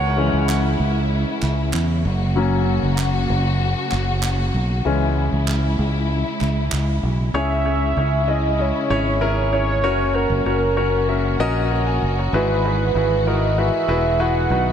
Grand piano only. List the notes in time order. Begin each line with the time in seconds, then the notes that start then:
Already playing: C#5 F#5
0.17 E3 G#3 C#4
2.36 F#3 A#3 C#4
4.85 E3 G#3 C#4
7.34 C#3 C#4 E4 G#4 C#5
7.65 C#4 E4 G#4 C#5
7.97 C#4 E4 G#4 C#5
8.28 C#4 E4 G#4 D#5
8.59 C#4 E4 G#4 D#5
8.90 C#4 E4 G#4 C#5
9.21 C#4 E4 G#4 A#4
9.52 C#4 E4 G#4 C#5
9.83 C#4 F#4 A#4 C#5
10.14 C#4 F#4 A#4 C#5
10.46 C#4 F#4 A#4 C#5
10.77 C#4 F#4 A#4 C#5
11.08 C#4 F#4 A#4 E5
11.40 C#4 F#4 A#4 D#5
11.71 A#4 F#5
11.87 G#5
12.19 C#5 A#5
12.34 G#2 E4 F#4 G#4 B4
12.65 E4 F#4 G#4 B4
12.95 E4 F#4 G#4 B4
13.27 E4 F#4 G#4 A#4
13.58 E4 F#4 G#4 B4
13.88 E4 F#4 G#4 B4
14.20 E4 F#4 G#4 B4
14.51 B2 B3 D#4 F#4 B4